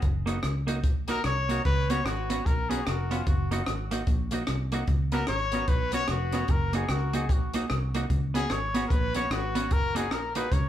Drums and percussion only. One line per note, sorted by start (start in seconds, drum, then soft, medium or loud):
0.02 kick medium
0.02 closed hi-hat medium
0.27 closed hi-hat medium
0.43 cross-stick loud
0.43 closed hi-hat medium
0.68 closed hi-hat loud
0.84 kick loud
0.84 closed hi-hat medium
1.08 closed hi-hat loud
1.24 cross-stick loud
1.24 closed hi-hat medium
1.49 closed hi-hat medium
1.65 kick loud
1.65 closed hi-hat soft
1.90 closed hi-hat medium
2.06 cross-stick loud
2.06 closed hi-hat medium
2.30 closed hi-hat medium
2.46 kick loud
2.46 closed hi-hat medium
2.71 closed hi-hat loud
2.87 cross-stick loud
2.87 closed hi-hat medium
3.11 closed hi-hat medium
3.27 kick loud
3.27 closed hi-hat medium
3.52 closed hi-hat medium
3.66 cross-stick loud
3.66 closed hi-hat medium
3.91 closed hi-hat loud
4.07 kick loud
4.07 closed hi-hat medium
4.31 closed hi-hat medium
4.47 cross-stick loud
4.47 closed hi-hat medium
4.72 closed hi-hat medium
4.87 kick loud
4.87 closed hi-hat medium
5.12 closed hi-hat medium
5.27 cross-stick loud
5.27 closed hi-hat medium
5.52 closed hi-hat medium
5.68 kick loud
5.68 closed hi-hat medium
5.92 closed hi-hat loud
6.08 cross-stick loud
6.08 closed hi-hat medium
6.32 cross-stick medium
6.32 closed hi-hat medium
6.48 kick loud
6.48 closed hi-hat medium
6.73 closed hi-hat loud
6.89 cross-stick loud
6.89 closed hi-hat medium
7.13 closed hi-hat loud
7.29 kick loud
7.29 closed hi-hat medium
7.54 closed hi-hat loud
7.70 cross-stick loud
7.70 closed hi-hat medium
7.94 closed hi-hat medium
8.10 kick loud
8.10 closed hi-hat medium
8.35 closed hi-hat medium
8.50 cross-stick loud
8.50 closed hi-hat medium
8.75 closed hi-hat medium
8.90 kick loud
8.90 closed hi-hat medium
9.14 closed hi-hat loud
9.31 cross-stick loud
9.31 closed hi-hat medium
9.55 closed hi-hat medium
9.71 kick medium
9.71 closed hi-hat medium
9.96 closed hi-hat loud
10.11 cross-stick loud
10.11 closed hi-hat medium
10.35 closed hi-hat medium
10.52 kick loud
10.52 closed hi-hat medium